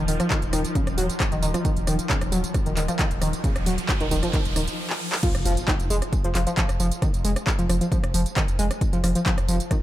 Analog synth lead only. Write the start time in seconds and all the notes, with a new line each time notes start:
0.08 D#3
0.20 F3
0.31 D#3
0.53 D#3
0.75 C#3
0.98 F#3
1.32 D#3
1.42 D#3
1.54 F3
1.65 D#3
1.87 D#3
2.10 C#3
2.32 F#3
2.66 D#3
2.77 D#3
2.88 F3
2.99 D#3
3.22 D#3
3.44 C#3
3.66 F#3
4.01 D#3
4.11 D#3
4.23 F3
4.34 D#3
4.56 D#3
5.23 F3
5.45 F3
5.68 D#3
5.90 G#3
6.24 F3
6.35 F3
6.47 F3
6.57 F3
6.80 F3
7.02 D#3
7.25 G#3
7.59 F3
7.69 F3
7.81 F3
7.92 F3
8.14 F3
8.37 D#3
8.59 G#3
8.93 F3
9.04 F3
9.15 F3
9.26 F3
9.48 F3
9.71 D#3